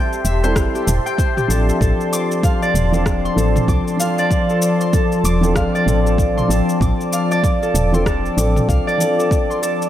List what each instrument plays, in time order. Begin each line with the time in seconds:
Already playing: felt piano G3 C4 E4 A4, harp G4 C5 E5 G5 A5, analog synth pad G4 E5 A5 C6
0.13 shaker
0.25 fm bass E1, harp E5, shaker
0.43 felt piano G3 C4 E4 A4, harp C5, shaker
0.56 fm bass G1, kick, cross-stick, shaker
0.75 harp G4, shaker
0.87 fm bass E1, mid tom, shaker
1.06 harp G5, shaker
1.18 harp C5, kick, shaker
1.37 harp G4, mid tom, shaker
1.48 fm bass A1, felt piano F3 C4 D4, harp A4, shaker
1.52 felt piano G4
1.69 shaker
1.81 fm bass A1, analog synth pad F3 D5, harp A4, kick, shaker
2.01 shaker
2.13 harp D6, shaker
2.31 shaker
2.43 harp F5, kick, shaker
2.62 harp D5, shaker
2.75 fm bass E1, mid tom, shaker
2.92 felt piano F3 C4 D4 A4, harp A4, shaker
3.06 kick, cross-stick, shaker
3.25 harp C6, shaker
3.36 fm bass A1, felt piano F3 C4 D4 A4, harp A4, shaker
3.56 mid tom, shaker
3.68 fm bass C2, harp D6, kick, shaker
3.88 shaker
3.97 felt piano F3 C4 D4 A4, harp F5, shaker
4.18 harp D5, shaker
4.31 kick, shaker
4.50 harp A4, shaker
4.62 shaker
4.81 harp C6, shaker
4.93 harp A4, kick, shaker
5.12 shaker
5.24 fm bass E1, harp D6, shaker
5.41 felt piano F3 C4 D4 A4, shaker
5.55 fm bass G1, harp F5, kick, cross-stick, shaker
5.75 harp D5, shaker
5.86 fm bass A1, felt piano F3 C4 D4 A4, mid tom, shaker
6.06 harp A4, shaker
6.18 kick, shaker
6.37 harp C6, mid tom, shaker
6.48 fm bass A1, felt piano F3 C4 D4, harp A4, shaker
6.52 felt piano A4
6.69 shaker
6.80 fm bass A1, analog synth pad D6, harp D6, kick, shaker
7.01 shaker
7.13 harp F5, shaker
7.31 harp D5, shaker
7.44 kick, shaker
7.63 harp A4, shaker
7.74 fm bass E1, mid tom, shaker
7.92 felt piano F3 C4 D4 A4, harp C6, shaker
8.06 harp A4, kick, cross-stick, shaker
8.26 shaker
8.37 fm bass A1, felt piano F3 C4 D4 A4, harp D6, shaker
8.56 mid tom, shaker
8.69 fm bass C2, harp F5, kick, shaker
8.87 harp D5, shaker
8.98 felt piano F3 C4 D4 A4, shaker
9.19 harp A4, shaker
9.31 kick, shaker
9.50 harp C6, shaker
9.62 harp A4, shaker
9.82 shaker